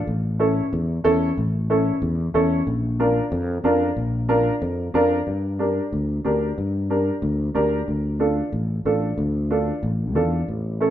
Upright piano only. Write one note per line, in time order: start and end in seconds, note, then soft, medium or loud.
0.39 0.62 C#4 medium
0.39 0.62 E4 medium
0.39 0.63 A4 medium
1.04 1.27 C#4 medium
1.04 1.27 E4 medium
1.04 1.27 A4 loud
1.70 1.93 C#4 medium
1.70 1.93 E4 medium
1.70 1.93 A4 medium
2.34 2.57 C#4 medium
2.34 2.57 E4 medium
2.34 2.58 A4 medium
3.00 3.22 D4 medium
3.00 3.22 F4 medium
3.00 3.23 A#4 medium
3.64 3.87 D4 medium
3.64 3.87 F4 medium
3.64 3.87 A#4 medium
4.29 4.52 D4 medium
4.29 4.52 F4 medium
4.29 4.52 A#4 medium
4.94 5.17 D4 medium
4.94 5.17 F4 medium
4.94 5.18 A#4 loud
5.59 5.82 D4 medium
5.59 5.83 G4 medium
5.59 5.83 A#4 medium
6.25 6.47 D4 medium
6.25 6.48 G4 medium
6.25 6.48 A#4 medium
6.90 7.13 D4 medium
6.90 7.13 G4 medium
6.90 7.13 A#4 medium
7.54 7.78 D4 medium
7.54 7.78 G4 medium
7.54 7.78 A#4 medium
8.20 8.43 D4 medium
8.20 8.43 F4 medium
8.20 8.43 A4 medium
8.85 9.08 D4 medium
8.85 9.08 F4 medium
8.85 9.09 A4 medium
9.51 9.73 D4 medium
9.51 9.73 F4 medium
9.51 9.74 A4 medium
10.15 10.38 D4 medium
10.15 10.38 F4 medium
10.15 10.39 A4 medium
10.81 10.90 C#4 medium
10.81 10.90 E4 medium
10.81 10.90 A4 medium